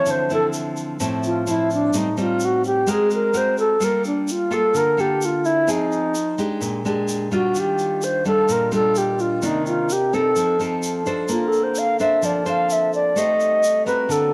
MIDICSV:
0, 0, Header, 1, 5, 480
1, 0, Start_track
1, 0, Tempo, 468019
1, 67, Time_signature, 4, 2, 24, 8
1, 14702, End_track
2, 0, Start_track
2, 0, Title_t, "Alto flute"
2, 0, Program_c, 0, 73
2, 0, Note_on_c, 0, 73, 107
2, 108, Note_on_c, 0, 72, 91
2, 123, Note_off_c, 0, 73, 0
2, 327, Note_off_c, 0, 72, 0
2, 347, Note_on_c, 0, 69, 85
2, 479, Note_off_c, 0, 69, 0
2, 1289, Note_on_c, 0, 65, 83
2, 1545, Note_on_c, 0, 64, 68
2, 1560, Note_off_c, 0, 65, 0
2, 1766, Note_off_c, 0, 64, 0
2, 1777, Note_on_c, 0, 62, 79
2, 2022, Note_on_c, 0, 63, 74
2, 2037, Note_off_c, 0, 62, 0
2, 2244, Note_off_c, 0, 63, 0
2, 2260, Note_on_c, 0, 65, 82
2, 2510, Note_on_c, 0, 66, 81
2, 2526, Note_off_c, 0, 65, 0
2, 2722, Note_off_c, 0, 66, 0
2, 2728, Note_on_c, 0, 67, 99
2, 2978, Note_on_c, 0, 68, 84
2, 2994, Note_off_c, 0, 67, 0
2, 3202, Note_off_c, 0, 68, 0
2, 3220, Note_on_c, 0, 70, 77
2, 3456, Note_on_c, 0, 72, 92
2, 3471, Note_off_c, 0, 70, 0
2, 3678, Note_off_c, 0, 72, 0
2, 3684, Note_on_c, 0, 69, 96
2, 3937, Note_on_c, 0, 70, 86
2, 3952, Note_off_c, 0, 69, 0
2, 4161, Note_off_c, 0, 70, 0
2, 4172, Note_on_c, 0, 62, 46
2, 4425, Note_on_c, 0, 65, 83
2, 4440, Note_off_c, 0, 62, 0
2, 4652, Note_on_c, 0, 69, 99
2, 4667, Note_off_c, 0, 65, 0
2, 4886, Note_on_c, 0, 70, 91
2, 4901, Note_off_c, 0, 69, 0
2, 5129, Note_on_c, 0, 67, 83
2, 5144, Note_off_c, 0, 70, 0
2, 5384, Note_on_c, 0, 65, 77
2, 5399, Note_off_c, 0, 67, 0
2, 5593, Note_on_c, 0, 64, 82
2, 5608, Note_off_c, 0, 65, 0
2, 5852, Note_on_c, 0, 63, 81
2, 5868, Note_off_c, 0, 64, 0
2, 6798, Note_off_c, 0, 63, 0
2, 7519, Note_on_c, 0, 66, 78
2, 7786, Note_on_c, 0, 67, 76
2, 7801, Note_off_c, 0, 66, 0
2, 8244, Note_on_c, 0, 72, 86
2, 8260, Note_off_c, 0, 67, 0
2, 8474, Note_off_c, 0, 72, 0
2, 8485, Note_on_c, 0, 69, 103
2, 8736, Note_on_c, 0, 70, 87
2, 8751, Note_off_c, 0, 69, 0
2, 8959, Note_off_c, 0, 70, 0
2, 8965, Note_on_c, 0, 69, 97
2, 9206, Note_on_c, 0, 67, 80
2, 9221, Note_off_c, 0, 69, 0
2, 9443, Note_on_c, 0, 65, 82
2, 9458, Note_off_c, 0, 67, 0
2, 9701, Note_on_c, 0, 63, 78
2, 9717, Note_off_c, 0, 65, 0
2, 9913, Note_off_c, 0, 63, 0
2, 9919, Note_on_c, 0, 65, 78
2, 10177, Note_on_c, 0, 67, 84
2, 10192, Note_off_c, 0, 65, 0
2, 10398, Note_on_c, 0, 69, 100
2, 10414, Note_off_c, 0, 67, 0
2, 10870, Note_off_c, 0, 69, 0
2, 11607, Note_on_c, 0, 65, 70
2, 11773, Note_on_c, 0, 69, 68
2, 11788, Note_off_c, 0, 65, 0
2, 11930, Note_on_c, 0, 72, 76
2, 11946, Note_off_c, 0, 69, 0
2, 12086, Note_on_c, 0, 77, 101
2, 12101, Note_off_c, 0, 72, 0
2, 12305, Note_off_c, 0, 77, 0
2, 12311, Note_on_c, 0, 76, 100
2, 12564, Note_on_c, 0, 74, 77
2, 12580, Note_off_c, 0, 76, 0
2, 12793, Note_off_c, 0, 74, 0
2, 12804, Note_on_c, 0, 77, 99
2, 13049, Note_on_c, 0, 76, 83
2, 13065, Note_off_c, 0, 77, 0
2, 13273, Note_off_c, 0, 76, 0
2, 13279, Note_on_c, 0, 74, 86
2, 13516, Note_on_c, 0, 75, 89
2, 13532, Note_off_c, 0, 74, 0
2, 14212, Note_off_c, 0, 75, 0
2, 14218, Note_on_c, 0, 71, 88
2, 14479, Note_on_c, 0, 69, 76
2, 14494, Note_off_c, 0, 71, 0
2, 14702, Note_off_c, 0, 69, 0
2, 14702, End_track
3, 0, Start_track
3, 0, Title_t, "Nylon-string guitar"
3, 0, Program_c, 1, 24
3, 0, Note_on_c, 1, 53, 60
3, 0, Note_on_c, 1, 60, 57
3, 0, Note_on_c, 1, 64, 65
3, 64, Note_on_c, 1, 50, 62
3, 294, Note_off_c, 1, 53, 0
3, 300, Note_off_c, 1, 60, 0
3, 303, Note_off_c, 1, 64, 0
3, 306, Note_on_c, 1, 53, 54
3, 312, Note_on_c, 1, 60, 57
3, 317, Note_on_c, 1, 64, 60
3, 988, Note_off_c, 1, 53, 0
3, 991, Note_off_c, 1, 60, 0
3, 992, Note_off_c, 1, 64, 0
3, 1001, Note_off_c, 1, 50, 0
3, 1024, Note_on_c, 1, 53, 53
3, 1025, Note_on_c, 1, 45, 66
3, 1028, Note_on_c, 1, 60, 63
3, 1034, Note_on_c, 1, 64, 58
3, 1466, Note_off_c, 1, 53, 0
3, 1469, Note_off_c, 1, 60, 0
3, 1471, Note_off_c, 1, 64, 0
3, 1507, Note_on_c, 1, 53, 53
3, 1513, Note_on_c, 1, 60, 55
3, 1518, Note_on_c, 1, 64, 55
3, 1962, Note_off_c, 1, 45, 0
3, 1967, Note_off_c, 1, 53, 0
3, 1970, Note_off_c, 1, 60, 0
3, 1972, Note_off_c, 1, 64, 0
3, 1984, Note_on_c, 1, 45, 58
3, 1988, Note_on_c, 1, 55, 55
3, 1992, Note_on_c, 1, 60, 49
3, 1993, Note_on_c, 1, 63, 55
3, 2128, Note_off_c, 1, 55, 0
3, 2128, Note_off_c, 1, 60, 0
3, 2130, Note_off_c, 1, 63, 0
3, 2227, Note_on_c, 1, 55, 54
3, 2229, Note_on_c, 1, 60, 56
3, 2234, Note_on_c, 1, 63, 69
3, 2908, Note_off_c, 1, 55, 0
3, 2908, Note_off_c, 1, 60, 0
3, 2911, Note_off_c, 1, 63, 0
3, 2922, Note_off_c, 1, 45, 0
3, 2942, Note_on_c, 1, 56, 74
3, 2947, Note_on_c, 1, 60, 57
3, 2948, Note_on_c, 1, 66, 51
3, 2955, Note_on_c, 1, 70, 62
3, 3386, Note_off_c, 1, 60, 0
3, 3389, Note_off_c, 1, 66, 0
3, 3390, Note_off_c, 1, 70, 0
3, 3419, Note_on_c, 1, 60, 50
3, 3424, Note_on_c, 1, 66, 61
3, 3429, Note_on_c, 1, 70, 60
3, 3880, Note_off_c, 1, 56, 0
3, 3883, Note_off_c, 1, 60, 0
3, 3884, Note_off_c, 1, 66, 0
3, 3888, Note_off_c, 1, 70, 0
3, 3897, Note_on_c, 1, 55, 61
3, 3900, Note_on_c, 1, 58, 50
3, 3904, Note_on_c, 1, 65, 55
3, 3908, Note_on_c, 1, 69, 53
3, 4583, Note_off_c, 1, 58, 0
3, 4586, Note_off_c, 1, 65, 0
3, 4588, Note_off_c, 1, 69, 0
3, 4622, Note_on_c, 1, 58, 65
3, 4625, Note_on_c, 1, 65, 63
3, 4631, Note_on_c, 1, 69, 66
3, 4837, Note_off_c, 1, 55, 0
3, 4861, Note_on_c, 1, 50, 72
3, 5065, Note_off_c, 1, 58, 0
3, 5067, Note_off_c, 1, 65, 0
3, 5068, Note_off_c, 1, 69, 0
3, 5098, Note_on_c, 1, 58, 61
3, 5105, Note_on_c, 1, 65, 57
3, 5109, Note_on_c, 1, 69, 57
3, 5782, Note_off_c, 1, 58, 0
3, 5786, Note_off_c, 1, 65, 0
3, 5788, Note_off_c, 1, 69, 0
3, 5799, Note_off_c, 1, 50, 0
3, 5815, Note_on_c, 1, 53, 60
3, 5819, Note_on_c, 1, 60, 54
3, 5820, Note_on_c, 1, 63, 49
3, 5827, Note_on_c, 1, 68, 60
3, 6298, Note_off_c, 1, 60, 0
3, 6300, Note_off_c, 1, 63, 0
3, 6301, Note_off_c, 1, 68, 0
3, 6541, Note_off_c, 1, 53, 0
3, 6545, Note_on_c, 1, 56, 58
3, 6551, Note_on_c, 1, 62, 57
3, 6554, Note_on_c, 1, 67, 59
3, 6776, Note_on_c, 1, 46, 70
3, 6986, Note_off_c, 1, 56, 0
3, 6989, Note_off_c, 1, 62, 0
3, 6990, Note_off_c, 1, 67, 0
3, 7025, Note_on_c, 1, 56, 56
3, 7032, Note_on_c, 1, 62, 67
3, 7035, Note_on_c, 1, 67, 69
3, 7466, Note_off_c, 1, 56, 0
3, 7468, Note_off_c, 1, 62, 0
3, 7471, Note_off_c, 1, 67, 0
3, 7501, Note_on_c, 1, 55, 59
3, 7504, Note_on_c, 1, 62, 55
3, 7514, Note_on_c, 1, 65, 71
3, 7715, Note_off_c, 1, 46, 0
3, 7747, Note_on_c, 1, 51, 59
3, 8423, Note_off_c, 1, 55, 0
3, 8426, Note_off_c, 1, 62, 0
3, 8427, Note_off_c, 1, 65, 0
3, 8463, Note_on_c, 1, 55, 59
3, 8468, Note_on_c, 1, 62, 65
3, 8476, Note_on_c, 1, 65, 64
3, 8681, Note_off_c, 1, 51, 0
3, 8705, Note_on_c, 1, 46, 69
3, 8905, Note_off_c, 1, 55, 0
3, 8907, Note_off_c, 1, 62, 0
3, 8911, Note_off_c, 1, 65, 0
3, 8939, Note_on_c, 1, 55, 70
3, 8943, Note_on_c, 1, 62, 62
3, 8948, Note_on_c, 1, 65, 63
3, 9622, Note_off_c, 1, 55, 0
3, 9625, Note_off_c, 1, 62, 0
3, 9626, Note_off_c, 1, 65, 0
3, 9640, Note_off_c, 1, 46, 0
3, 9660, Note_on_c, 1, 48, 56
3, 9663, Note_on_c, 1, 51, 55
3, 9666, Note_on_c, 1, 58, 49
3, 9672, Note_on_c, 1, 62, 54
3, 10139, Note_off_c, 1, 51, 0
3, 10141, Note_off_c, 1, 58, 0
3, 10144, Note_off_c, 1, 62, 0
3, 10390, Note_on_c, 1, 60, 59
3, 10394, Note_on_c, 1, 63, 61
3, 10400, Note_on_c, 1, 69, 69
3, 10598, Note_off_c, 1, 48, 0
3, 10624, Note_on_c, 1, 53, 77
3, 10828, Note_off_c, 1, 60, 0
3, 10830, Note_off_c, 1, 63, 0
3, 10832, Note_off_c, 1, 69, 0
3, 10866, Note_on_c, 1, 60, 56
3, 10873, Note_on_c, 1, 63, 55
3, 10876, Note_on_c, 1, 69, 64
3, 11306, Note_off_c, 1, 60, 0
3, 11308, Note_off_c, 1, 63, 0
3, 11311, Note_off_c, 1, 69, 0
3, 11343, Note_on_c, 1, 62, 64
3, 11350, Note_on_c, 1, 72, 73
3, 11351, Note_on_c, 1, 69, 58
3, 11559, Note_off_c, 1, 53, 0
3, 11581, Note_on_c, 1, 58, 69
3, 12265, Note_off_c, 1, 62, 0
3, 12266, Note_off_c, 1, 69, 0
3, 12268, Note_off_c, 1, 72, 0
3, 12304, Note_on_c, 1, 62, 61
3, 12309, Note_on_c, 1, 69, 62
3, 12315, Note_on_c, 1, 72, 71
3, 12518, Note_off_c, 1, 58, 0
3, 12536, Note_on_c, 1, 53, 71
3, 12745, Note_off_c, 1, 62, 0
3, 12746, Note_off_c, 1, 69, 0
3, 12750, Note_off_c, 1, 72, 0
3, 12774, Note_on_c, 1, 62, 56
3, 12778, Note_on_c, 1, 69, 58
3, 12780, Note_on_c, 1, 72, 62
3, 13460, Note_off_c, 1, 62, 0
3, 13462, Note_off_c, 1, 69, 0
3, 13462, Note_off_c, 1, 72, 0
3, 13475, Note_off_c, 1, 53, 0
3, 13495, Note_on_c, 1, 57, 64
3, 13499, Note_on_c, 1, 63, 53
3, 13501, Note_on_c, 1, 67, 57
3, 13507, Note_on_c, 1, 72, 59
3, 13977, Note_off_c, 1, 63, 0
3, 13979, Note_off_c, 1, 67, 0
3, 13982, Note_off_c, 1, 72, 0
3, 14214, Note_on_c, 1, 60, 61
3, 14219, Note_on_c, 1, 66, 58
3, 14221, Note_on_c, 1, 70, 69
3, 14435, Note_off_c, 1, 57, 0
3, 14448, Note_on_c, 1, 50, 72
3, 14660, Note_off_c, 1, 60, 0
3, 14662, Note_off_c, 1, 66, 0
3, 14663, Note_off_c, 1, 70, 0
3, 14702, Note_off_c, 1, 50, 0
3, 14702, End_track
4, 0, Start_track
4, 0, Title_t, "French horn section"
4, 0, Program_c, 2, 60
4, 7737, Note_on_c, 2, 51, 68
4, 7741, Note_on_c, 2, 55, 66
4, 7742, Note_on_c, 2, 65, 80
4, 7743, Note_on_c, 2, 62, 61
4, 9642, Note_off_c, 2, 55, 0
4, 9643, Note_off_c, 2, 65, 0
4, 9661, Note_on_c, 2, 60, 67
4, 9663, Note_on_c, 2, 70, 78
4, 10590, Note_off_c, 2, 51, 0
4, 10593, Note_off_c, 2, 62, 0
4, 10612, Note_off_c, 2, 60, 0
4, 10613, Note_off_c, 2, 70, 0
4, 10629, Note_on_c, 2, 63, 63
4, 10630, Note_on_c, 2, 53, 68
4, 10634, Note_on_c, 2, 69, 72
4, 11576, Note_off_c, 2, 53, 0
4, 11576, Note_off_c, 2, 63, 0
4, 11587, Note_on_c, 2, 50, 78
4, 11588, Note_on_c, 2, 58, 67
4, 11593, Note_on_c, 2, 60, 66
4, 13479, Note_off_c, 2, 69, 0
4, 13485, Note_off_c, 2, 50, 0
4, 13486, Note_off_c, 2, 58, 0
4, 13490, Note_on_c, 2, 55, 61
4, 13494, Note_on_c, 2, 69, 80
4, 14446, Note_off_c, 2, 55, 0
4, 14448, Note_off_c, 2, 69, 0
4, 14469, Note_on_c, 2, 54, 60
4, 14469, Note_on_c, 2, 58, 72
4, 14471, Note_on_c, 2, 62, 60
4, 14702, Note_off_c, 2, 54, 0
4, 14702, Note_off_c, 2, 58, 0
4, 14702, Note_off_c, 2, 60, 0
4, 14702, Note_off_c, 2, 62, 0
4, 14702, End_track
5, 0, Start_track
5, 0, Title_t, "Drums"
5, 62, Note_on_c, 9, 82, 61
5, 164, Note_off_c, 9, 82, 0
5, 310, Note_on_c, 9, 82, 23
5, 412, Note_off_c, 9, 82, 0
5, 545, Note_on_c, 9, 82, 58
5, 648, Note_off_c, 9, 82, 0
5, 785, Note_on_c, 9, 82, 27
5, 888, Note_off_c, 9, 82, 0
5, 1028, Note_on_c, 9, 82, 61
5, 1130, Note_off_c, 9, 82, 0
5, 1265, Note_on_c, 9, 82, 28
5, 1368, Note_off_c, 9, 82, 0
5, 1508, Note_on_c, 9, 82, 58
5, 1611, Note_off_c, 9, 82, 0
5, 1747, Note_on_c, 9, 82, 26
5, 1849, Note_off_c, 9, 82, 0
5, 1984, Note_on_c, 9, 82, 62
5, 2086, Note_off_c, 9, 82, 0
5, 2227, Note_on_c, 9, 82, 24
5, 2330, Note_off_c, 9, 82, 0
5, 2461, Note_on_c, 9, 82, 60
5, 2564, Note_off_c, 9, 82, 0
5, 2711, Note_on_c, 9, 82, 27
5, 2813, Note_off_c, 9, 82, 0
5, 2947, Note_on_c, 9, 82, 58
5, 3050, Note_off_c, 9, 82, 0
5, 3186, Note_on_c, 9, 82, 29
5, 3288, Note_off_c, 9, 82, 0
5, 3425, Note_on_c, 9, 82, 53
5, 3528, Note_off_c, 9, 82, 0
5, 3668, Note_on_c, 9, 82, 26
5, 3770, Note_off_c, 9, 82, 0
5, 3907, Note_on_c, 9, 82, 65
5, 4009, Note_off_c, 9, 82, 0
5, 4147, Note_on_c, 9, 82, 24
5, 4250, Note_off_c, 9, 82, 0
5, 4389, Note_on_c, 9, 82, 65
5, 4491, Note_off_c, 9, 82, 0
5, 4631, Note_on_c, 9, 82, 26
5, 4733, Note_off_c, 9, 82, 0
5, 4867, Note_on_c, 9, 82, 60
5, 4970, Note_off_c, 9, 82, 0
5, 5114, Note_on_c, 9, 82, 26
5, 5216, Note_off_c, 9, 82, 0
5, 5347, Note_on_c, 9, 82, 62
5, 5450, Note_off_c, 9, 82, 0
5, 5587, Note_on_c, 9, 82, 27
5, 5690, Note_off_c, 9, 82, 0
5, 5825, Note_on_c, 9, 82, 67
5, 5927, Note_off_c, 9, 82, 0
5, 6071, Note_on_c, 9, 82, 26
5, 6174, Note_off_c, 9, 82, 0
5, 6306, Note_on_c, 9, 82, 63
5, 6408, Note_off_c, 9, 82, 0
5, 6549, Note_on_c, 9, 82, 27
5, 6651, Note_off_c, 9, 82, 0
5, 6786, Note_on_c, 9, 82, 56
5, 6889, Note_off_c, 9, 82, 0
5, 7031, Note_on_c, 9, 82, 29
5, 7134, Note_off_c, 9, 82, 0
5, 7264, Note_on_c, 9, 82, 56
5, 7367, Note_off_c, 9, 82, 0
5, 7504, Note_on_c, 9, 82, 26
5, 7607, Note_off_c, 9, 82, 0
5, 7742, Note_on_c, 9, 82, 62
5, 7845, Note_off_c, 9, 82, 0
5, 7985, Note_on_c, 9, 82, 26
5, 8088, Note_off_c, 9, 82, 0
5, 8223, Note_on_c, 9, 82, 60
5, 8326, Note_off_c, 9, 82, 0
5, 8462, Note_on_c, 9, 82, 25
5, 8565, Note_off_c, 9, 82, 0
5, 8705, Note_on_c, 9, 82, 64
5, 8808, Note_off_c, 9, 82, 0
5, 8942, Note_on_c, 9, 82, 30
5, 9044, Note_off_c, 9, 82, 0
5, 9183, Note_on_c, 9, 82, 57
5, 9285, Note_off_c, 9, 82, 0
5, 9425, Note_on_c, 9, 82, 24
5, 9527, Note_off_c, 9, 82, 0
5, 9664, Note_on_c, 9, 82, 55
5, 9767, Note_off_c, 9, 82, 0
5, 9909, Note_on_c, 9, 82, 26
5, 10012, Note_off_c, 9, 82, 0
5, 10149, Note_on_c, 9, 82, 69
5, 10251, Note_off_c, 9, 82, 0
5, 10393, Note_on_c, 9, 82, 24
5, 10496, Note_off_c, 9, 82, 0
5, 10626, Note_on_c, 9, 82, 66
5, 10728, Note_off_c, 9, 82, 0
5, 10871, Note_on_c, 9, 82, 27
5, 10973, Note_off_c, 9, 82, 0
5, 11105, Note_on_c, 9, 82, 59
5, 11208, Note_off_c, 9, 82, 0
5, 11343, Note_on_c, 9, 82, 26
5, 11445, Note_off_c, 9, 82, 0
5, 11573, Note_on_c, 9, 82, 63
5, 11676, Note_off_c, 9, 82, 0
5, 11821, Note_on_c, 9, 82, 26
5, 11923, Note_off_c, 9, 82, 0
5, 12052, Note_on_c, 9, 82, 63
5, 12155, Note_off_c, 9, 82, 0
5, 12300, Note_on_c, 9, 82, 27
5, 12402, Note_off_c, 9, 82, 0
5, 12538, Note_on_c, 9, 82, 61
5, 12641, Note_off_c, 9, 82, 0
5, 12780, Note_on_c, 9, 82, 27
5, 12882, Note_off_c, 9, 82, 0
5, 13024, Note_on_c, 9, 82, 60
5, 13126, Note_off_c, 9, 82, 0
5, 13263, Note_on_c, 9, 82, 25
5, 13365, Note_off_c, 9, 82, 0
5, 13504, Note_on_c, 9, 82, 64
5, 13607, Note_off_c, 9, 82, 0
5, 13745, Note_on_c, 9, 82, 26
5, 13848, Note_off_c, 9, 82, 0
5, 13984, Note_on_c, 9, 82, 66
5, 14086, Note_off_c, 9, 82, 0
5, 14228, Note_on_c, 9, 82, 28
5, 14330, Note_off_c, 9, 82, 0
5, 14464, Note_on_c, 9, 82, 64
5, 14567, Note_off_c, 9, 82, 0
5, 14702, End_track
0, 0, End_of_file